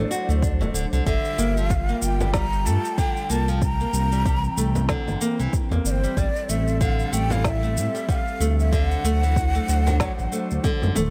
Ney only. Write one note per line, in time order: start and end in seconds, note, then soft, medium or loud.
0.00 0.75 D5 loud
1.07 1.72 E5 loud
1.71 2.04 F5 medium
2.03 2.34 G5 loud
2.35 2.68 A#5 loud
2.66 3.00 A5 loud
2.99 3.32 G5 loud
3.30 3.62 A5 loud
3.64 4.86 A#5 loud
5.86 5.92 D5 medium
5.91 6.20 C5 loud
6.19 6.51 D5 loud
6.49 6.82 E5 loud
6.81 7.14 F5 medium
7.13 7.33 G5 loud
7.31 7.47 F5 loud
7.46 8.12 E5 loud
8.10 8.16 F#5 loud
8.15 8.59 F5 loud
8.59 8.75 E5 medium
8.73 10.64 F#5 loud